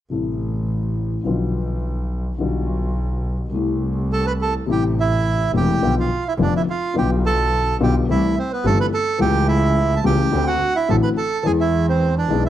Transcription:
0.10 upright piano A1 A2 C3 G3 A3 E4, double bass A1
1.24 upright piano B1 B2 D3 F3 B3 F4, double bass B1
2.38 double bass B1, upright piano B1 B2 D3 G3 B3
2.42 upright piano F4
3.52 double bass C2, upright piano C2 C3 G3 A3
3.56 upright piano E4
4.12 bandoneon A4 A5
4.26 bandoneon B4 B5
4.41 bandoneon A4 A5
4.66 double bass A1, upright piano A1 A2 C3 G3 A3 E4
4.71 bandoneon G4 G5
5.00 bandoneon E4 E5
5.53 double bass E1, upright piano E1 E2 C3 G3 A3 E4, bandoneon G4
5.57 bandoneon G5
5.81 double bass B1, upright piano B1 B2 D3 F3 B3 F4
5.99 bandoneon F4 F5
6.28 bandoneon E4 E5
6.38 double bass F1, upright piano F1 F2 D3 F3 B3 F4, bandoneon D4
6.42 bandoneon D5
6.56 bandoneon E4 E5
6.70 bandoneon F4 F5
6.94 upright piano B1 B2 D3 G3 B3 F4, double bass B1
6.98 bandoneon G4 G5
7.26 bandoneon A4 A5
7.80 double bass B1, upright piano B1 B2 D3 G3 B3 F4, bandoneon G4 G5
8.08 double bass C2, upright piano C2 C3 E3 A3 C4 G4, bandoneon E4 E5
8.38 bandoneon C4 C5
8.53 bandoneon B3 B4
8.64 upright piano G1 G2 E3 A3 C4 G4, double bass G1, bandoneon A4 A5
8.80 bandoneon B4 B5
8.94 bandoneon A4 A5
9.18 upright piano C#2 C#3 E3 A3 C#4 G4, double bass C#2, bandoneon G4 G5
9.48 bandoneon E4 E5
9.96 bandoneon A5
10.04 double bass C#2, upright piano C#2 C#3 E3 A3 C#4 G4, bandoneon G4 G5
10.32 upright piano D2 D3 A3 C4 F#4, double bass D2
10.47 bandoneon F#4 F#5
10.75 bandoneon E4 E5
10.88 upright piano A1 A2 D3 A3 C4 F#4, double bass A1, bandoneon A4 A5
11.03 bandoneon B4 B5
11.17 bandoneon A4 A5
11.43 upright piano E2 E3 G#3 B3 G#4, double bass E2, bandoneon G#4 G#5
11.60 bandoneon E4 E5
11.89 bandoneon C4 C5
12.18 bandoneon D4 D5
12.28 double bass B1, upright piano B1 B2 E3 G#3 B3 G#4
12.46 bandoneon E5

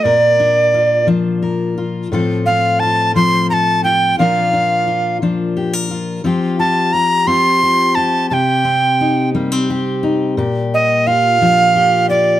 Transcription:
Already playing: steel-string acoustic guitar F4
0.03 steel-string acoustic guitar A#2 A#4, recorder D5
0.40 steel-string acoustic guitar D4
0.74 steel-string acoustic guitar F4
1.07 steel-string acoustic guitar F3 D4
1.42 steel-string acoustic guitar A#4
1.78 steel-string acoustic guitar F4
2.12 steel-string acoustic guitar A2 F3 C4 F4 A4
2.46 steel-string acoustic guitar C4, recorder F5
2.80 steel-string acoustic guitar F4, recorder A5
3.15 steel-string acoustic guitar F3 C4, recorder C6
3.50 steel-string acoustic guitar A4, recorder A5 A#5
3.84 steel-string acoustic guitar F4, recorder G5
4.19 steel-string acoustic guitar A#2 F3 D4 F4 A#4, recorder F5
4.53 steel-string acoustic guitar D4
4.88 steel-string acoustic guitar F4
5.22 steel-string acoustic guitar F3 D4
5.57 steel-string acoustic guitar G4
5.73 steel-string acoustic guitar A#4
5.91 steel-string acoustic guitar F4
6.24 steel-string acoustic guitar F3 C4 F4 G4
6.59 steel-string acoustic guitar F4, recorder A5
6.93 steel-string acoustic guitar G4, recorder A#5
7.27 steel-string acoustic guitar C4 F4, recorder C6
7.63 steel-string acoustic guitar G4
7.95 steel-string acoustic guitar G4, recorder A5
8.30 steel-string acoustic guitar C3 G4, recorder G5 A5
8.65 steel-string acoustic guitar C4
9.01 steel-string acoustic guitar D#4
9.35 steel-string acoustic guitar G3 A#3
9.52 steel-string acoustic guitar C4
9.70 steel-string acoustic guitar G4
10.03 steel-string acoustic guitar D#4
10.37 steel-string acoustic guitar A#2 G4
10.74 recorder D#5
11.07 steel-string acoustic guitar F4, recorder F5
11.41 steel-string acoustic guitar F3 D4
11.76 steel-string acoustic guitar G4
12.10 steel-string acoustic guitar F4, recorder D5

